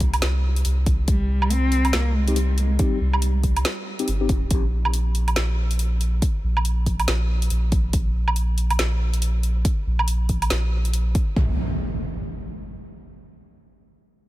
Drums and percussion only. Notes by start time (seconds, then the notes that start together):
0.00 kick, closed hi-hat
0.14 closed hi-hat, low woodblock
0.22 snare, closed hi-hat
0.56 closed hi-hat
0.65 closed hi-hat
0.86 kick, closed hi-hat
1.08 kick, closed hi-hat
1.42 low woodblock
1.50 closed hi-hat
1.72 closed hi-hat
1.85 closed hi-hat, low woodblock
1.93 snare, closed hi-hat
2.28 closed hi-hat
2.36 closed hi-hat
2.58 closed hi-hat
2.79 kick, closed hi-hat
3.14 low woodblock
3.22 closed hi-hat
3.44 kick, closed hi-hat
3.57 closed hi-hat, low woodblock
3.65 snare, closed hi-hat
3.99 closed hi-hat
4.08 closed hi-hat
4.29 kick, closed hi-hat
4.51 kick, closed hi-hat
4.85 low woodblock
4.94 closed hi-hat
5.15 closed hi-hat
5.28 closed hi-hat, low woodblock
5.36 snare, closed hi-hat
5.71 closed hi-hat
5.79 closed hi-hat
6.01 closed hi-hat
6.22 kick, closed hi-hat
6.57 low woodblock
6.65 closed hi-hat
6.86 kick, closed hi-hat
7.00 closed hi-hat, low woodblock
7.08 snare, closed hi-hat
7.42 closed hi-hat
7.50 closed hi-hat
7.72 kick, closed hi-hat
7.93 kick, closed hi-hat
8.28 low woodblock
8.36 closed hi-hat
8.58 closed hi-hat
8.70 closed hi-hat, low woodblock
8.79 snare, closed hi-hat
9.14 closed hi-hat
9.22 closed hi-hat
9.43 closed hi-hat
9.65 kick, closed hi-hat
9.99 low woodblock
10.08 closed hi-hat
10.29 kick, closed hi-hat
10.42 closed hi-hat, low woodblock
10.50 snare, closed hi-hat
10.85 closed hi-hat
10.94 closed hi-hat
11.15 kick, closed hi-hat
11.37 kick